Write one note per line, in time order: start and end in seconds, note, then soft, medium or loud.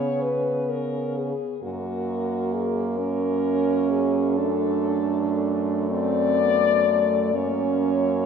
0.00 1.33 C#3 medium
0.00 1.33 B3 medium
0.00 1.34 B3 medium
0.00 0.24 C#5 medium
0.22 0.71 B4 medium
0.69 1.19 A#4 medium
1.17 1.62 G#4 medium
1.62 7.30 F#2 medium
1.62 2.99 A#3 medium
1.62 4.34 A#3 medium
1.62 2.55 F#4 medium
2.54 2.84 G#4 medium
2.97 4.38 C#4 medium
2.97 3.91 A#4 medium
3.90 4.38 G#4 medium
4.36 7.36 A3 medium
4.36 5.93 D4 medium
4.36 5.63 A4 medium
5.91 6.42 C4 medium
5.91 7.37 D5 loud
6.40 6.87 B3 medium
6.88 7.36 A3 medium
7.34 8.26 F#2 medium
7.34 8.26 A#3 medium
7.34 8.26 C#4 medium
7.34 8.26 C#5 medium